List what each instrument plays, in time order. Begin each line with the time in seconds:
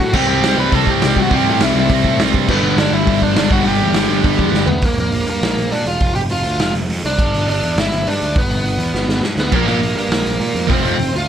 Already playing: lead electric guitar F#4 F#5
0.00 picked electric bass A2
0.13 picked electric bass C2, distorted electric guitar C3 G3 C4, lead electric guitar G4 G5, kick, crash
0.27 picked electric bass C2, lead electric guitar G4 G5
0.43 picked electric bass C2, snare, open hi-hat
0.57 picked electric bass C2, lead electric guitar B4 B5
0.72 picked electric bass C2, distorted electric guitar C3 G3 C4, lead electric guitar A4 A5, kick, open hi-hat
0.87 picked electric bass C2, lead electric guitar G4 G5, kick
1.02 picked electric bass C2, snare, open hi-hat
1.16 picked electric bass C2, lead electric guitar F#4, kick
1.22 lead electric guitar F#5
1.29 picked electric bass C2, distorted electric guitar C3 G3 C4, kick, open hi-hat
1.33 lead electric guitar G4 G5
1.48 picked electric bass A2, lead electric guitar G4 G5
1.60 picked electric bass C2, lead electric guitar E4 E5, snare, open hi-hat
1.75 picked electric bass C2, lead electric guitar E4
1.80 lead electric guitar E5
1.90 picked electric bass C2, distorted electric guitar C3 G3 C4, kick, open hi-hat
2.04 picked electric bass A2, kick
2.19 picked electric bass C2, snare, open hi-hat
2.34 picked electric bass G2, kick
2.48 picked electric bass G1, distorted electric guitar G2 D3 G3, lead electric guitar B3 B4, kick, crash
2.62 picked electric bass G1
2.77 picked electric bass G1, lead electric guitar D4 D5, snare, open hi-hat
2.92 picked electric bass G1, lead electric guitar E4 E5
3.07 picked electric bass G1, distorted electric guitar G2 D3 G3, kick, open hi-hat
3.22 picked electric bass G1, lead electric guitar D4 D5, kick
3.36 picked electric bass G1, lead electric guitar D4 D5, snare, open hi-hat
3.50 picked electric bass G1, distorted electric guitar G2 D3 G3, lead electric guitar F#4 F#5, kick
3.64 picked electric bass G1, lead electric guitar G4 G5, open hi-hat
3.82 picked electric bass E2
3.94 picked electric bass G1, snare, open hi-hat
4.08 picked electric bass G1, distorted electric guitar G2 D3 G3
4.24 picked electric bass G1, kick, open hi-hat
4.39 picked electric bass E2, kick
4.53 picked electric bass G1, snare
4.67 picked electric bass D2, lead electric guitar B3 B4, floor tom
4.82 picked electric bass A#1, lead electric guitar A#3 A#4, kick, open hi-hat
4.97 picked electric bass A#1, lead electric guitar A#4, open hi-hat
5.01 lead electric guitar A#3
5.12 picked electric bass A#1, open hi-hat
5.27 picked electric bass G2, lead electric guitar A#3 A#4, open hi-hat
5.41 picked electric bass A#1, snare, open hi-hat
5.57 picked electric bass A#1, open hi-hat
5.72 picked electric bass A#2, lead electric guitar D4 D5, open hi-hat
5.86 picked electric bass E1, lead electric guitar F4 F5, open hi-hat
6.00 picked electric bass F1, kick, open hi-hat
6.15 picked electric bass F1, lead electric guitar G4 G5, open hi-hat
6.30 picked electric bass F1, lead electric guitar F4 F5, open hi-hat
6.44 picked electric bass D2, open hi-hat
6.59 picked electric bass F1, snare, open hi-hat
6.74 picked electric bass F1, open hi-hat
6.89 picked electric bass F2, open hi-hat
7.04 picked electric bass C2, lead electric guitar D4 D5, open hi-hat
7.19 picked electric bass G1, kick, crash
7.33 picked electric bass G1, open hi-hat
7.48 picked electric bass G1, lead electric guitar D4 D5, open hi-hat
7.63 picked electric bass E2, open hi-hat
7.76 picked electric bass G1, lead electric guitar E5, snare, open hi-hat
7.81 lead electric guitar E4
7.92 picked electric bass G1, open hi-hat
8.07 picked electric bass G2, lead electric guitar D4 D5, open hi-hat
8.22 picked electric bass D2, open hi-hat
8.36 picked electric bass G1, lead electric guitar B3 B4, kick, open hi-hat
8.50 picked electric bass G1, open hi-hat
8.63 picked electric bass G1, open hi-hat
8.78 picked electric bass E2, open hi-hat
8.93 picked electric bass G1, snare
9.07 picked electric bass G1, snare
9.20 picked electric bass G2, snare
9.36 picked electric bass D2, lead electric guitar B3 B4, snare
9.52 picked electric bass A#1, distorted electric guitar A#2 F3 A#3, lead electric guitar A#3 A#4, kick, crash
9.64 picked electric bass A#1, distorted electric guitar A#2 F3 A#3, open hi-hat
9.68 lead electric guitar A#3 A#4
9.79 picked electric bass A#1, open hi-hat
9.96 picked electric bass G2, lead electric guitar A#3 A#4, open hi-hat
10.09 picked electric bass A#1, snare, open hi-hat
10.26 picked electric bass A#1, open hi-hat
10.40 picked electric bass A#2, open hi-hat
10.55 picked electric bass F2, open hi-hat
10.67 picked electric bass F1, distorted electric guitar F2 C3 F3, lead electric guitar C4, kick, open hi-hat
10.73 lead electric guitar C5
10.82 picked electric bass F1, distorted electric guitar F2 C3 F3, open hi-hat
10.98 picked electric bass F1, open hi-hat
11.13 picked electric bass D2, lead electric guitar F4, open hi-hat
11.18 lead electric guitar F5